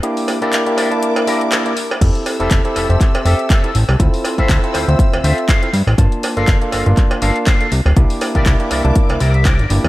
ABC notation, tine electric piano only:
X:1
M:4/4
L:1/16
Q:"Swing 16ths" 1/4=121
K:Gdor
V:1 name="Tine electric piano"
[B,DEG]3 [B,DEG]2 [B,DEG]2 [B,DEa]3 [B,DEG]3 [B,DEG] z2 | [CEGA]3 [CEGA]2 [CEGA]2 [CGce]3 [CGAe]3 [CEGA] z2 | [CEFA]3 [CEFA]2 [CEFA]2 [CFce]3 [CFAe]3 [CEFA] z2 | [B,DFa]3 [B,DFA]2 [B,DFA]2 [B,DF]3 [B,DFa]3 [B,DFA] z2 |
[B,DEG]3 [B,DEG]2 [B,DEG]2 [B,DEa]3 z2 [B,DEG] z [B,DEG]2 |]